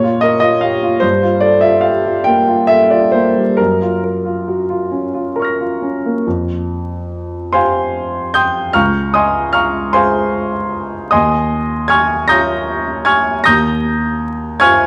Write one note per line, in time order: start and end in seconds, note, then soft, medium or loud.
0.00 1.00 A#2 soft
0.00 0.35 F4 soft
0.00 0.23 C#5 medium
0.21 0.55 A#4 soft
0.21 0.39 D#5 medium
0.40 0.74 F4 soft
0.40 0.62 D#5 medium
0.61 0.83 G4 soft
0.61 1.02 F5 medium
0.83 1.03 F4 soft
1.00 3.54 G2 soft
1.00 1.42 C5 medium
1.22 1.55 F4 soft
1.40 1.75 A4 soft
1.40 1.62 D5 medium
1.61 1.96 F4 soft
1.61 1.83 E5 medium
1.81 2.05 G4 soft
1.81 2.25 F5 medium
2.05 2.39 F4 soft
2.24 2.61 A#3 soft
2.24 2.69 G5 medium
2.47 2.83 F4 soft
2.67 3.05 A4 soft
2.67 2.91 E5 medium
2.90 3.27 F4 soft
2.90 3.13 D5 medium
3.12 3.49 A#3 soft
3.12 3.57 C5 medium
3.36 3.58 G3 soft
3.57 6.21 F#2 soft
3.57 4.02 A#4 medium
3.82 4.17 F4 soft
4.04 4.39 A#4 soft
4.25 4.60 F4 soft
4.48 4.69 F#4 soft
4.70 5.04 F4 soft
4.91 5.27 C#4 soft
5.14 5.50 F4 soft
5.36 5.72 A#4 soft
5.36 6.21 A#5 soft
5.36 6.23 C#6 soft
5.42 6.24 F6 soft
5.42 6.26 A#6 soft
5.60 5.96 F4 soft
5.82 6.17 C#4 soft
6.06 6.26 A#3 soft
6.27 8.73 F2 soft
7.53 8.73 F4 soft
7.53 8.73 G4 soft
7.53 8.32 C5 medium
7.53 8.32 F5 medium
7.53 8.32 G#5 medium
7.53 8.34 C6 medium
8.34 8.73 G5 soft
8.34 8.73 C6 medium
8.34 8.73 D#6 medium
8.34 8.75 G6 medium
8.73 11.08 C#2 soft
8.73 9.12 F5 medium
8.73 9.12 A#5 medium
8.73 9.12 C#6 medium
8.73 9.14 F6 medium
9.14 9.52 D#5 medium
9.14 9.52 G#5 medium
9.14 9.52 C6 medium
9.14 9.54 D#6 medium
9.53 9.91 F5 medium
9.53 9.91 A#5 medium
9.53 9.91 C#6 medium
9.53 9.93 F6 medium
9.93 11.08 F4 soft
9.93 11.09 G#4 soft
9.93 11.08 C5 medium
9.93 11.08 F5 medium
9.93 11.08 G#5 medium
9.93 11.11 C6 medium
11.11 13.42 D#2 soft
11.11 11.86 D#5 medium
11.11 11.86 G#5 medium
11.11 11.87 C6 medium
11.11 11.90 D#6 medium
11.88 12.27 G#5 medium
11.88 12.27 C#6 medium
11.88 12.27 F6 medium
11.88 12.29 G#6 medium
12.28 13.42 F4 soft
12.28 13.42 C#5 soft
12.28 13.03 A#5 medium
12.28 13.03 D#6 medium
12.28 13.03 G6 medium
12.28 13.06 A#6 medium
13.05 13.42 G#5 medium
13.05 13.42 C#6 medium
13.05 13.42 F6 medium
13.05 13.45 G#6 medium
13.44 14.87 D#2 soft
13.44 14.57 A#5 medium
13.44 14.57 D#6 medium
13.44 14.57 G6 medium
13.44 14.60 A#6 medium
14.60 14.87 F4 soft
14.60 14.87 C5 soft
14.60 14.87 G#5 medium
14.60 14.87 C#6 medium
14.60 14.87 F6 medium
14.60 14.87 G#6 medium